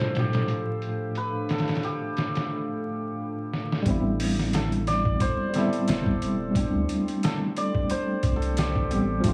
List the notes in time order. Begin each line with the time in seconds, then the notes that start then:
Already playing: A2 F3 A3 D4 F4 A4 C5 F5
0.00 snare, closed hi-hat
0.15 snare, closed hi-hat
0.19 G4
0.33 snare, closed hi-hat
0.48 closed hi-hat
0.82 closed hi-hat
1.15 B4, closed hi-hat
1.49 A4, snare, closed hi-hat
1.58 snare, closed hi-hat
1.68 snare, closed hi-hat
1.75 snare, closed hi-hat
1.83 G4, closed hi-hat
2.17 snare, closed hi-hat
2.35 snare, closed hi-hat
3.53 snare
3.72 snare
3.83 A1 G3 B3 A4 G5 C6, kick, closed hi-hat
3.88 C4 E4
4.20 open hi-hat
4.39 snare
4.53 A4, snare, closed hi-hat
4.72 closed hi-hat
4.87 D5, snare, closed hi-hat
5.05 kick
5.20 C5, kick, closed hi-hat
5.50 G3 B3, closed hi-hat
5.55 C4 E4 A4, snare
5.73 closed hi-hat
5.88 E1 A4, snare, closed hi-hat
6.06 kick
6.22 closed hi-hat
6.51 G3 A3, kick
6.56 C4, closed hi-hat
6.60 D4
6.75 D2
6.89 closed hi-hat
7.08 closed hi-hat
7.23 A4, snare, closed hi-hat
7.57 D5, closed hi-hat
7.75 kick
7.90 C5, closed hi-hat
8.23 C2, kick, closed hi-hat
8.36 A4
8.42 closed hi-hat
8.57 G4, snare, closed hi-hat
8.76 kick
8.90 A1 G3 B3 C4 G4, closed hi-hat
9.20 F3 A3, kick, closed hi-hat
9.25 A1 D4 F4